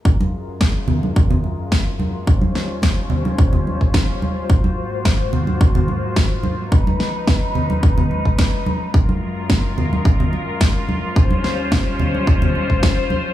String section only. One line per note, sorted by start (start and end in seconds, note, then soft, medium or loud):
0.05 2.25 F#2 medium
0.05 2.25 G#3 medium
0.05 6.68 F4 medium
0.05 2.25 A#4 medium
2.28 4.48 D#2 medium
2.28 4.48 G3 medium
2.28 4.48 C#4 medium
2.28 6.68 C5 medium
4.49 6.69 G#2 medium
4.49 6.69 A#3 medium
4.49 6.69 F#4 medium
6.72 8.92 C#2 medium
6.72 8.92 F3 medium
6.72 8.92 D#4 medium
6.72 8.92 B4 medium
8.94 11.14 F#2 medium
8.94 11.14 G#3 medium
8.94 13.33 F4 medium
8.94 11.14 A#4 medium
11.16 13.33 D#2 medium
11.16 13.33 G3 medium
11.16 13.33 C#4 medium
11.16 13.33 C5 medium